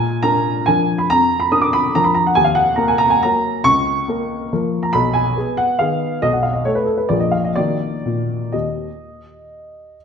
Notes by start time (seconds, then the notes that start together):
Already playing: A#2 G#5
0.23 D4 A#4 A#5
0.66 F3 D4 A#4 G#5
0.98 B5
1.10 F2 A#5
1.40 B5
1.52 D4 A#4 D#6
1.61 D6
1.73 B5
1.95 F3 D4 A#4 A#5
2.04 B5
2.15 A#5
2.27 F#5
2.35 D#2 G#5
2.44 F5
2.55 F#5
2.76 A#3 A#4 A#5
2.88 G#5
2.98 A#5
3.10 G#5
3.23 F#3 A#3 A#4 A#5
3.64 C#2 C#6
4.08 A#3 A#4
4.53 F3 A#3 A#4
4.83 A#5
4.93 B1 B5
5.13 G#5
5.37 B3 G#4
5.57 F#5
5.79 D#3 B3 G#4 F5
6.22 B1 D#5
6.33 F#5
6.43 F5
6.53 D#5
6.65 A3 A4 C#5
6.75 B4
6.86 A4
6.98 B4
7.09 A#1 F3 A#3 G#4 D5
7.20 D#5
7.31 F5
7.45 D#5
7.56 D#3 A#3 F#4 D5
8.06 A#2
8.52 D#2 D#5